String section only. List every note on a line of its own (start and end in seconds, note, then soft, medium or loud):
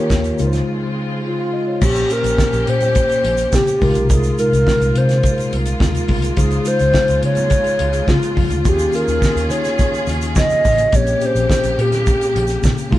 0.00 0.38 D#3 medium
0.00 0.39 A#3 medium
0.00 0.39 C#4 medium
0.00 0.39 G4 medium
0.40 1.81 C#3 medium
0.40 1.81 G#3 medium
0.40 1.81 C4 medium
0.40 1.81 F4 medium
1.82 3.79 A#3 medium
1.82 3.80 C#4 medium
1.82 3.79 G4 loud
3.82 8.62 G#3 medium
3.82 8.62 A#3 medium
3.82 10.90 F4 medium
6.38 8.63 C#3 medium
8.66 10.91 D#3 medium
8.66 10.91 C#4 medium
8.66 10.91 G#4 medium
10.92 12.90 C#3 medium
10.92 12.90 A#3 medium
10.92 12.89 G4 loud
12.93 12.99 G#3 medium
12.93 12.99 C4 medium
12.93 12.99 F4 medium